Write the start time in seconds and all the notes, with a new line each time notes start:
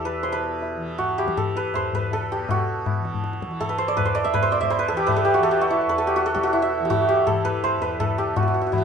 Already playing: E2 B2 E3 E4 G4 A4
0.05 B4, tabla te
0.23 B2 C5, tabla na
0.32 B4
0.62 tabla tin
0.76 E3
0.98 F#4, tabla tin, tabla ge
1.18 G4, tabla na
1.23 E3
1.28 tabla ke
1.37 A4, tabla na, tabla ge
1.56 B4, tabla te
1.71 E2 C5, tabla na, tabla ge
1.93 B4, tabla ge
2.11 A4, tabla tin, tabla ge
2.21 B2
2.32 G4
2.49 B2 F#4, tabla tin, tabla ge
2.86 tabla na, tabla ge
2.99 E3
3.05 tabla te
3.14 tabla ge
3.24 tabla te
3.33 tabla te
3.42 tabla ke
3.47 E3
3.51 tabla te
3.60 A4, tabla tin, tabla ge
3.69 B4
3.78 C5
3.88 D5
3.95 E2 B4, tabla tin, tabla ge
4.05 C5
4.15 D5, tabla na
4.24 E5, tabla ke
4.34 B4, tabla na, tabla ge
4.43 B2 C5
4.52 D5, tabla te
4.61 E5, tabla ge
4.70 C5, tabla na
4.79 B4
4.88 E3 A4, tabla na
4.97 G4
5.07 B4, tabla tin, tabla ge
5.16 A4
5.25 G4
5.34 E3 F#4
5.43 A4, tabla tin
5.51 G4
5.61 F#4, tabla na
5.70 E4
5.81 E2, tabla na
5.89 B4
5.98 A4
6.07 G4
6.16 F#4, tabla te
6.26 A4, tabla te
6.34 B2 G4, tabla ke
6.43 F#4, tabla te
6.53 E4, tabla tin
6.62 E5
6.80 E3
6.85 G4
6.90 F#4, tabla tin, tabla ge
7.09 G4
7.27 E3 A4, tabla na, tabla ge
7.45 B4, tabla ge
7.64 C5, tabla na, tabla ge
7.76 E2
7.82 B4, tabla te
8.00 A4, tabla na, tabla ge
8.18 G4, tabla te
8.23 B2
8.36 F#4, tabla tin, tabla ge
8.43 F#4
8.48 F#4
8.54 F#4
8.61 F#4
8.67 F#4
8.71 E3 F#4, tabla na, tabla ge
8.78 F#4